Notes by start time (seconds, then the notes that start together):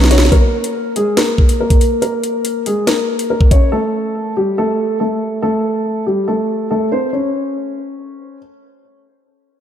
Already playing: B1 C#3 F#3 B3 F#4 B4 C#5 F#5 C#6
0.04 snare
0.09 C#3 F#3 B3 C#4 F#4 C#5, snare, closed hi-hat
0.18 snare
0.25 snare
0.32 A#3 A#4, kick, closed hi-hat
0.64 closed hi-hat
0.96 G#3 G#4, closed hi-hat
1.17 A#3 A#4, snare, closed hi-hat
1.38 kick
1.49 closed hi-hat
1.60 A#3 A#4
1.70 kick, closed hi-hat
1.81 closed hi-hat
2.02 A#3 A#4, closed hi-hat
2.23 closed hi-hat
2.45 closed hi-hat
2.66 G#3 G#4, closed hi-hat
2.87 A#3 A#4, snare, closed hi-hat
3.19 closed hi-hat
3.30 A#3 A#4
3.41 kick
3.51 C#4 C#5, kick, closed hi-hat
3.72 A3 A4
4.37 G3 G4
4.58 A3 A4
5.00 A3 A4
5.42 A3 A4
6.06 G3 G4
6.28 A3 A4
6.71 A3 A4
6.92 C4 C5
7.13 C#4